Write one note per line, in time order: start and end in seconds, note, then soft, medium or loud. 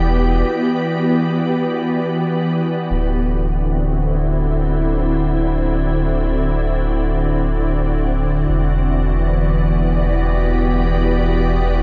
0.00 0.43 E1 medium
0.00 2.91 E3 medium
0.00 2.91 B3 medium
0.00 2.90 F#4 medium
0.00 2.91 G4 medium
0.00 2.90 D5 medium
2.90 8.45 D1 medium
2.90 8.49 D3 medium
3.24 11.83 F#4 medium
3.31 8.49 C4 medium
3.40 9.60 E4 medium
3.84 11.83 D5 medium
8.49 11.83 E1 medium
8.49 11.83 E3 medium
8.74 11.83 B3 medium
9.34 11.83 G4 medium